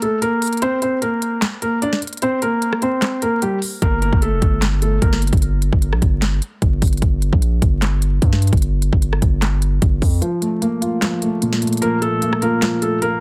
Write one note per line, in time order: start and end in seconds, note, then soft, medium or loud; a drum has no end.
0.02 0.18 A3 medium
0.02 0.18 A4 medium
0.02 closed hi-hat medium
0.22 0.60 A#3 medium
0.22 0.60 A#4 medium
0.22 closed hi-hat medium
0.42 closed hi-hat medium
0.42 open hi-hat medium
0.47 closed hi-hat medium
0.53 closed hi-hat medium
0.57 closed hi-hat soft
0.62 0.78 C4 medium
0.62 0.78 C5 loud
0.62 closed hi-hat medium
0.82 0.98 C4 medium
0.82 0.98 C5 medium
0.82 closed hi-hat medium
1.02 1.40 A#3 medium
1.02 1.39 A#4 medium
1.02 closed hi-hat medium
1.22 closed hi-hat medium
1.42 snare loud
1.42 clap medium
1.42 closed hi-hat medium
1.62 1.78 A#3 medium
1.62 1.77 A#4 medium
1.62 closed hi-hat medium
1.82 1.98 D4 medium
1.82 1.97 D5 medium
1.82 closed hi-hat medium
1.93 snare medium
2.02 closed hi-hat medium
2.07 closed hi-hat medium
2.13 closed hi-hat medium
2.17 closed hi-hat soft
2.22 2.38 C4 medium
2.22 2.38 C5 medium
2.22 closed hi-hat medium
2.42 2.80 A#3 medium
2.42 2.80 A#4 medium
2.42 closed hi-hat medium
2.62 closed hi-hat medium
2.73 cross-stick medium
2.82 3.20 C4 medium
2.82 3.20 C5 medium
2.82 closed hi-hat medium
3.02 snare loud
3.02 clap medium
3.02 closed hi-hat medium
3.22 3.38 A#3 medium
3.22 3.38 A#4 medium
3.22 closed hi-hat medium
3.42 3.58 G3 medium
3.42 3.57 G4 medium
3.42 closed hi-hat medium
3.62 open hi-hat medium
3.82 4.11 G1 loud
3.82 3.98 A#3 medium
3.82 3.98 A#4 loud
3.82 kick loud
3.82 closed hi-hat medium
4.02 4.18 A#3 medium
4.02 4.17 A#4 medium
4.02 closed hi-hat medium
4.13 4.34 G1 loud
4.13 kick loud
4.22 4.60 A3 medium
4.22 4.60 A4 medium
4.22 closed hi-hat medium
4.33 4.42 F1 loud
4.42 5.00 G1 loud
4.42 kick medium
4.42 closed hi-hat medium
4.62 snare loud
4.62 clap medium
4.62 closed hi-hat medium
4.82 4.98 A3 medium
4.82 4.97 A4 medium
4.82 closed hi-hat medium
5.02 5.31 G1 loud
5.02 5.18 A#3 medium
5.02 5.17 A#4 medium
5.02 kick loud
5.02 closed hi-hat medium
5.13 snare medium
5.22 closed hi-hat medium
5.27 closed hi-hat medium
5.33 5.71 G1 loud
5.33 kick loud
5.33 closed hi-hat medium
5.37 closed hi-hat soft
5.42 closed hi-hat medium
5.62 closed hi-hat medium
5.73 5.94 G1 loud
5.73 kick loud
5.82 closed hi-hat medium
5.93 6.02 A#1 loud
5.93 cross-stick medium
6.02 6.40 G1 loud
6.02 kick medium
6.02 closed hi-hat medium
6.22 snare loud
6.22 clap medium
6.22 closed hi-hat medium
6.42 closed hi-hat medium
6.62 6.81 G1 loud
6.62 kick medium
6.62 closed hi-hat medium
6.82 7.01 G1 loud
6.82 kick loud
6.82 closed hi-hat medium
6.82 open hi-hat medium
6.87 closed hi-hat medium
6.93 closed hi-hat medium
6.97 closed hi-hat soft
7.02 7.31 G1 loud
7.02 kick loud
7.02 closed hi-hat medium
7.22 closed hi-hat medium
7.33 7.61 A#1 loud
7.33 kick loud
7.42 closed hi-hat medium
7.62 8.20 G1 loud
7.62 kick medium
7.62 closed hi-hat medium
7.82 snare loud
7.82 clap medium
7.82 closed hi-hat medium
8.02 closed hi-hat medium
8.22 8.51 G2 loud
8.22 kick loud
8.22 closed hi-hat medium
8.33 snare medium
8.42 closed hi-hat medium
8.47 closed hi-hat medium
8.53 8.91 G1 loud
8.53 kick loud
8.53 closed hi-hat medium
8.57 closed hi-hat soft
8.62 closed hi-hat medium
8.82 closed hi-hat medium
8.93 9.21 G1 loud
8.93 kick loud
9.02 closed hi-hat medium
9.13 cross-stick medium
9.22 9.80 G1 loud
9.22 kick medium
9.22 closed hi-hat medium
9.42 snare loud
9.42 clap medium
9.42 closed hi-hat medium
9.62 closed hi-hat medium
9.82 10.01 G1 loud
9.82 kick loud
9.82 closed hi-hat medium
10.02 10.21 F2 loud
10.02 kick loud
10.02 open hi-hat medium
10.22 11.01 F3 medium
10.22 closed hi-hat medium
10.41 11.21 A3 medium
10.41 closed hi-hat medium
10.62 11.62 A#3 loud
10.62 closed hi-hat medium
10.81 11.82 F4 medium
10.81 closed hi-hat medium
11.02 11.80 F3 medium
11.02 snare loud
11.02 clap medium
11.02 closed hi-hat medium
11.22 11.61 A3 medium
11.22 closed hi-hat medium
11.42 12.42 A#2 medium
11.42 closed hi-hat medium
11.53 snare medium
11.62 12.62 A3 medium
11.62 closed hi-hat medium
11.67 closed hi-hat medium
11.73 closed hi-hat medium
11.77 closed hi-hat soft
11.82 12.60 F3 medium
11.82 11.98 A#3 medium
11.82 11.97 A#4 medium
11.82 closed hi-hat medium
12.02 12.40 A3 medium
12.02 12.39 A4 medium
12.02 closed hi-hat medium
12.22 13.01 A#3 medium
12.22 closed hi-hat medium
12.33 cross-stick medium
12.42 12.80 A#3 medium
12.42 13.20 F4 medium
12.42 12.80 A#4 medium
12.42 closed hi-hat medium
12.62 13.20 F3 medium
12.62 snare loud
12.62 clap medium
12.62 closed hi-hat medium
12.82 12.98 A3 medium
12.82 12.98 A4 medium
12.82 closed hi-hat medium
13.02 13.20 A#3 medium
13.02 13.20 A#4 medium
13.02 closed hi-hat medium